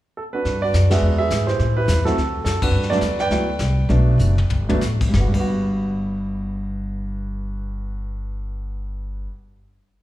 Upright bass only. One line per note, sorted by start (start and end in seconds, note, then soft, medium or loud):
0.45 0.72 G2 medium
0.74 1.01 F#2 medium
1.02 1.29 E2 medium
1.31 1.58 G#2 medium
1.59 1.87 A2 medium
1.88 2.15 E2 medium
2.17 2.44 D2 medium
2.45 2.71 F#2 medium
2.71 2.99 G2 medium
3.01 3.29 E2 medium
3.30 3.58 D2 medium
3.59 3.88 C2 medium
3.89 4.17 B1 medium
4.18 4.48 F#1 medium
4.49 4.80 G1 medium
4.81 5.13 A1 medium
5.14 5.25 G1 medium
5.34 9.26 G1 medium